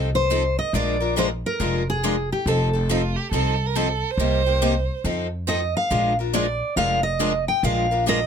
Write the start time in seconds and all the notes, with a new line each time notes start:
Already playing: C2
0.15 C5
0.31 F3 C4 D#4 A4
0.59 D#5
0.73 A#1 F3 G#3 D4 F4 A#4 D5
1.00 D4 F4 A#4
1.16 F3 G#3 D4 F4 A#4 C5
1.46 A#4
1.60 F1 F3 G#3 D4 F4 A#4
1.90 G#4
2.03 F3 G#3 D4 F4 A#4
2.32 G4
2.46 F1 F3 C4 D#4 A4
2.73 C4 D#4 A4
2.89 F3 C4 D#4 F4 A4
3.16 G4
3.32 C2 F3 C4 D#4 A4
3.66 A#4
3.75 F3 C4 D#4 A4
4.11 C5
4.18 C2 C3 G3 A#3 D#4 G4
4.46 A#3 D#4 G4
4.62 C3 G3 A#3 D#4 G4
5.04 F2 F3 C4 D#4 A4
5.48 F3 C4 D#4 A4 D#5
5.77 F5
5.91 A#1 F3 G#3 D4 F4 A#4
6.19 D4 F4 A#4
6.33 F3 G#3 D4 F4 A#4 D5
6.76 F1 F3 G#3 D4 F4 A#4 F5
7.03 D#5
7.19 F3 G#3 D4 F4 A#4
7.48 G5
7.63 A#1 F3 G#3 D4 F4 A#4 F5
7.91 D4 F4 A#4
8.06 F3 G#3 D4 F4 A#4 D#5